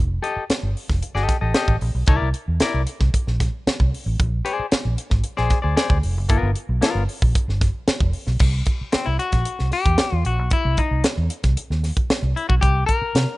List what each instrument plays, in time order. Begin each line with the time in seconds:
Already playing: fingered electric bass F1
0.22 clean electric guitar G4 A4 D#5, closed hi-hat
0.36 muted fingered electric bass stroke
0.50 muted fingered electric bass stroke, snare, closed hi-hat
0.63 fingered electric bass G1
0.77 open hi-hat
0.90 fingered electric bass F1, kick, snare
1.03 closed hi-hat
1.15 fingered electric bass G1, clean electric guitar G4 A4 D#5, snare
1.29 kick, snare, closed hi-hat
1.41 fingered electric bass A1, clean electric guitar G4 A4 D#5
1.54 clean electric guitar G4 A4 D#5, snare, closed hi-hat
1.68 fingered electric bass A1, kick
1.81 fingered electric bass A#1, open hi-hat
1.95 fingered electric bass B1
2.06 fingered electric bass C2, clean electric guitar E4 A#4 D5, kick, closed hi-hat
2.22 fingered electric bass C2
2.34 closed hi-hat
2.48 fingered electric bass E2
2.60 clean electric guitar E4 A#4 D5, muted fingered electric bass stroke, snare, closed hi-hat
2.74 fingered electric bass C2
2.87 closed hi-hat
3.00 fingered electric bass C2, kick, snare
3.14 muted fingered electric bass stroke, kick, closed hi-hat
3.27 fingered electric bass A#1, snare
3.40 kick, snare, closed hi-hat
3.67 muted fingered electric bass stroke, snare, closed hi-hat
3.80 fingered electric bass C2, kick
3.94 open hi-hat
4.06 fingered electric bass A1
4.20 fingered electric bass A#1, kick, closed hi-hat
4.45 clean electric guitar G#4 C5 D5, closed hi-hat
4.59 muted fingered electric bass stroke
4.72 muted fingered electric bass stroke, snare, closed hi-hat
4.85 fingered electric bass A#1
4.98 closed hi-hat
5.10 fingered electric bass G#1, kick, snare
5.24 closed hi-hat
5.37 fingered electric bass A#1, clean electric guitar G#4 C5 D5, snare
5.50 kick, snare, closed hi-hat
5.62 fingered electric bass D2, clean electric guitar G#4 C5 D5
5.76 clean electric guitar G#4 C5 D5, snare, closed hi-hat
5.90 fingered electric bass D2, kick
6.03 fingered electric bass F1, open hi-hat
6.17 fingered electric bass F#1
6.29 fingered electric bass G1, clean electric guitar B3 F4 A#4, kick, closed hi-hat
6.43 fingered electric bass G1
6.56 closed hi-hat
6.69 fingered electric bass B1
6.81 clean electric guitar B3 F4 A#4, snare, closed hi-hat
6.95 fingered electric bass G1
7.09 open hi-hat
7.22 fingered electric bass A#1, kick
7.35 muted fingered electric bass stroke, kick, closed hi-hat
7.48 fingered electric bass G1, snare
7.61 kick, snare, closed hi-hat
7.88 muted fingered electric bass stroke, snare, closed hi-hat
8.00 fingered electric bass F1, kick
8.13 open hi-hat
8.27 fingered electric bass B1, snare
8.39 fingered electric bass C2, kick, crash
8.66 kick, closed hi-hat
8.81 muted fingered electric bass stroke
8.92 clean electric guitar C4, muted fingered electric bass stroke, snare, closed hi-hat
9.06 fingered electric bass C2, clean electric guitar E4
9.19 clean electric guitar F#4, closed hi-hat
9.32 fingered electric bass A#1, kick, snare, closed hi-hat
9.45 closed hi-hat
9.59 fingered electric bass C2, snare
9.71 clean electric guitar G4, snare, open hi-hat
9.86 fingered electric bass E2, kick, closed hi-hat
9.98 snare, closed hi-hat
10.12 fingered electric bass E2
10.25 fingered electric bass A#1, clean electric guitar F#4, closed hi-hat
10.39 fingered electric bass B1
10.50 clean electric guitar E4, kick, closed hi-hat
10.65 fingered electric bass C2
10.77 clean electric guitar D#4, kick, closed hi-hat
10.91 fingered electric bass C2
11.04 snare, closed hi-hat
11.18 fingered electric bass E2
11.30 closed hi-hat
11.43 fingered electric bass C2, kick, snare, closed hi-hat
11.57 closed hi-hat
11.70 fingered electric bass D#2, snare
11.84 snare, open hi-hat
11.97 kick, closed hi-hat
12.10 muted fingered electric bass stroke, snare, closed hi-hat
12.23 fingered electric bass C2
12.36 clean electric guitar E4, closed hi-hat
12.49 fingered electric bass B1, clean electric guitar F#4, kick
12.61 fingered electric bass C2, clean electric guitar G4, kick, closed hi-hat
12.86 clean electric guitar A#4, kick, closed hi-hat
13.02 muted fingered electric bass stroke
13.15 fingered electric bass C3, snare, closed hi-hat